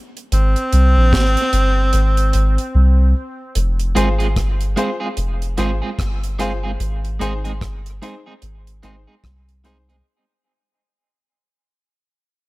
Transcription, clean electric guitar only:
3.95 4.07 G#3 medium
3.95 4.08 C4 medium
3.95 4.08 F4 loud
3.95 4.08 G#4 medium
4.19 4.27 G#3 medium
4.19 4.26 C4 soft
4.19 4.26 F4 medium
4.19 4.26 G#4 medium
4.76 4.88 G#3 medium
4.76 4.89 C4 medium
4.76 4.89 F4 medium
4.76 4.89 G#4 medium
5.00 5.08 G#3 soft
5.00 5.08 C4 medium
5.00 5.07 F4 medium
5.00 5.07 G#4 medium
5.58 5.70 G#3 medium
5.58 5.70 C4 medium
5.58 5.70 F4 loud
5.58 5.71 G#4 medium
5.82 5.89 G#3 soft
5.82 5.89 C4 medium
5.82 5.89 F4 medium
5.82 5.88 G#4 medium
6.39 6.51 G#3 medium
6.39 6.51 C4 medium
6.39 6.51 F4 loud
6.39 6.52 G#4 medium
6.64 6.71 G#3 soft
6.64 6.71 C4 soft
6.64 6.70 F4 medium
6.64 6.70 G#4 medium
7.19 7.32 G#3 medium
7.19 7.32 C4 medium
7.19 7.32 D#4 medium
7.19 7.33 G#4 medium
7.44 7.52 G#3 medium
7.44 7.51 C4 soft
7.44 7.51 D#4 medium
7.44 7.51 G#4 medium
8.02 8.13 G#3 medium
8.02 8.14 C4 medium
8.02 8.14 D#4 medium
8.02 8.14 G#4 medium
8.26 8.33 G#3 soft
8.26 8.33 C4 medium
8.26 8.33 D#4 medium
8.26 8.32 G#4 medium
8.83 8.95 G#3 medium
8.83 8.95 C4 medium
8.83 8.95 D#4 medium
8.83 8.95 G#4 medium
9.07 9.14 G#3 medium
9.07 9.14 C4 medium
9.07 9.14 D#4 soft
9.07 9.14 G#4 medium
9.64 9.76 G#3 medium
9.64 9.76 C4 medium
9.64 9.76 D#4 medium
9.64 9.77 G#4 medium
9.89 9.96 G#3 medium
9.89 9.95 C4 medium
9.89 9.95 D#4 medium
9.89 9.95 G#4 medium

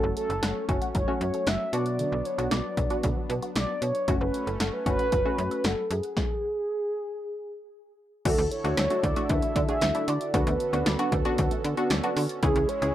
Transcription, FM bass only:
0.03 0.14 F#1 loud
0.30 0.40 F#1 loud
0.43 0.53 F#1 loud
0.69 0.79 F#1 loud
0.95 1.05 F#1 medium
1.21 1.31 F#2 loud
1.47 1.57 F#1 loud
1.73 2.04 B2 loud
2.12 2.23 B1 medium
2.38 2.49 B1 medium
2.51 2.62 B1 loud
2.77 2.88 B1 medium
3.04 3.14 B1 loud
3.30 3.40 B2 loud
3.56 3.66 B1 loud
3.82 3.92 B2 medium
4.08 4.18 F#1 loud
4.21 4.31 F#1 loud
4.47 4.58 F#1 loud
4.60 4.71 F#1 loud
4.86 4.97 F#1 medium
5.12 5.23 F#1 medium
5.38 5.49 F#2 loud
5.64 5.75 F#1 loud
5.91 6.01 F#2 loud
8.25 8.36 D2 loud
8.38 8.49 D2 loud
8.64 8.75 D2 loud
8.78 8.88 D2 loud
9.03 9.14 D2 loud
9.30 9.40 D2 loud
9.56 9.66 D3 loud
9.82 9.92 D2 loud
10.08 10.18 D3 loud
10.34 10.44 D2 loud
10.47 10.57 D2 loud
10.73 10.84 D2 loud
10.86 10.97 D2 loud
11.12 11.23 D2 loud
11.38 11.49 D2 loud
11.64 11.75 D3 loud
11.90 12.01 D2 loud
12.17 12.27 D3 loud
12.43 12.53 C#2 loud
12.56 12.66 C#2 loud
12.82 12.92 C#2 loud

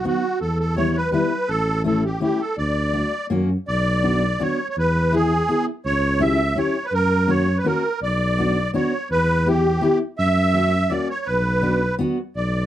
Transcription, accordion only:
0.07 0.39 F#4 medium
0.41 0.58 A4 medium
0.60 0.75 A4 medium
0.76 0.96 C#5 medium
0.97 1.10 B4 medium
1.12 1.49 B4 medium
1.49 1.82 A4 loud
1.86 2.04 A4 medium
2.05 2.20 G4 medium
2.21 2.41 G4 medium
2.41 2.56 A4 medium
2.58 3.27 D5 medium
3.68 4.43 D5 medium
4.41 4.68 C#5 medium
4.70 4.76 C#5 medium
4.79 5.15 B4 medium
5.15 5.65 G#4 loud
5.86 6.22 C#5 loud
6.21 6.58 E5 loud
6.58 6.86 C#5 medium
6.84 6.93 B4 medium
6.94 7.31 A#4 loud
7.30 7.58 C#5 medium
7.58 7.66 B4 medium
7.66 8.00 A#4 medium
8.03 8.71 D5 medium
8.75 9.08 C#5 medium
9.11 9.48 B4 loud
9.48 9.99 G4 medium
10.18 10.92 E5 loud
10.90 11.08 D5 medium
11.10 11.27 C#5 medium
11.26 11.95 B4 medium
12.36 12.66 D5 medium

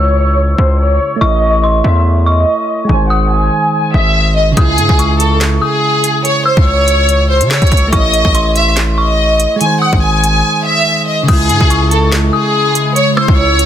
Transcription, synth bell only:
0.00 1.17 E6 medium
1.21 1.61 C#6 loud
1.64 2.23 C6 medium
2.26 2.86 C#6 medium
3.10 4.53 D#6 medium
4.57 4.97 D#6 medium
4.99 5.58 C#6 medium
5.62 6.21 D#6 medium
6.46 7.89 E6 loud
7.92 8.32 C#6 loud
8.35 8.94 C6 medium
8.98 9.57 C#6 medium
9.82 11.24 D#6 medium
11.29 11.68 D#6 loud
11.70 12.30 C#6 medium
12.33 12.92 D#6 medium
13.17 13.66 E6 loud

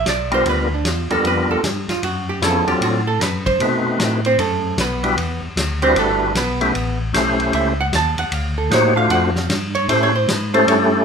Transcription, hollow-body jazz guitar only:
0.09 0.32 D5 medium
0.34 0.47 C5 medium
0.49 0.72 B4 medium
0.74 0.88 D4 soft
0.88 1.11 F4 medium
1.12 1.25 A4 medium
1.27 1.50 B4 medium
1.51 1.65 A4 medium
1.65 1.89 G4 medium
1.90 2.03 F4 medium
2.04 2.28 F#4 medium
2.29 2.43 G4 medium
2.44 2.68 A4 medium
2.68 2.81 G4 medium
2.83 3.07 F#4 medium
3.07 3.22 A4 medium
3.22 3.46 B4 medium
3.46 3.83 C5 medium
4.26 4.39 C4 medium
4.26 4.39 C5 medium
4.40 4.76 A3 medium
4.40 4.76 A4 medium
4.80 5.40 B3 medium
4.80 5.40 B4 medium
5.83 5.96 C4 medium
5.83 5.96 C5 medium
5.99 6.34 A3 medium
5.99 6.34 A4 medium
6.37 6.97 B3 medium
6.37 6.97 B4 medium
7.55 7.79 E5 medium
7.81 7.93 F#5 medium
7.95 8.19 A5 loud
8.19 8.34 F#5 medium
8.34 8.58 F5 medium
8.58 8.71 A4 medium
8.74 8.97 C5 medium
8.97 9.10 F5 medium
9.11 9.36 F#5 loud
9.36 9.51 F5 loud
9.51 9.74 D5 medium
9.75 9.89 C#5 medium
9.90 10.02 C5 medium
10.03 10.15 C#5 loud
10.16 10.29 C5 medium
10.29 10.53 B4 medium
10.54 10.67 C5 medium
10.68 11.05 C#5 medium

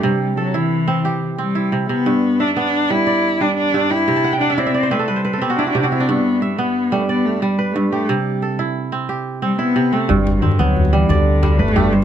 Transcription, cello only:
0.04 0.37 G3 medium
0.38 0.57 F#3 medium
0.55 1.22 E3 medium
1.39 1.86 G3 medium
1.90 2.41 B3 medium
2.40 2.56 D4 medium
2.57 2.92 D4 medium
2.90 3.43 E4 medium
3.41 3.57 D4 medium
3.57 3.92 D4 medium
3.91 4.40 E4 medium
4.41 4.60 D4 medium
4.59 4.93 C4 medium
4.92 5.11 A3 medium
5.09 5.39 G3 medium
5.38 5.43 C4 medium
5.42 5.57 B3 medium
5.58 5.69 D4 medium
5.70 5.80 D4 medium
5.80 5.91 D4 medium
5.91 6.10 C4 medium
6.09 6.44 B3 medium
6.42 6.60 G3 medium
6.59 6.93 B3 medium
6.92 7.08 A3 medium
7.08 7.27 B3 medium
7.25 7.43 A3 medium
7.42 7.71 G3 medium
7.72 7.91 G3 medium
7.72 7.77 A3 soft
7.91 8.10 A3 medium
8.09 8.59 G3 medium
9.44 9.59 G3 medium
9.60 9.95 B3 medium
9.93 10.11 A3 medium
10.10 10.21 G3 medium
10.21 10.32 G3 medium
10.32 10.44 G3 medium
10.43 10.62 D3 medium
10.60 10.94 F#3 medium
10.92 11.11 E3 medium
11.10 11.61 D3 medium
11.60 11.95 A3 medium
11.94 12.04 G3 medium

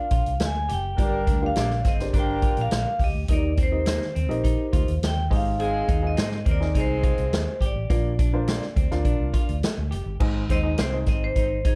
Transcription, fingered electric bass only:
0.11 0.24 A#1 medium
0.26 0.39 C2 medium
0.40 0.71 D2 medium
0.70 0.95 F#1 medium
0.98 1.29 G1 loud
1.27 1.52 D2 medium
1.57 1.81 A#1 medium
1.85 2.10 G1 medium
2.14 2.51 G1 medium
2.57 2.70 A#1 medium
2.71 2.84 A#1 medium
3.00 3.12 C#2 medium
3.15 3.27 D2 medium
3.29 3.97 D#2 loud
4.16 4.30 D#2 medium
4.30 4.55 A#1 medium
4.73 4.86 D2 medium
4.89 5.01 D#2 medium
5.02 5.27 D#2 medium
5.31 5.81 G#1 loud
5.89 6.14 D#2 medium
6.18 6.42 G#2 medium
6.46 6.71 D#2 medium
6.75 7.13 C2 loud
7.18 7.31 C2 medium
7.32 7.45 D#2 medium
7.61 7.74 G#1 medium
7.76 7.88 A1 medium
7.90 8.58 A#1 loud
8.77 8.89 D2 loud
8.91 9.04 D2 medium
9.05 9.18 A#1 loud
9.20 9.32 C2 medium
9.49 9.61 D2 medium
9.78 9.90 D2 medium
9.93 10.05 F#1 medium
10.06 10.19 G1 medium
10.20 10.46 G#1 loud
10.49 10.75 D#2 medium
10.79 11.04 C2 medium
11.07 11.32 G#1 medium
11.36 11.74 G#1 medium

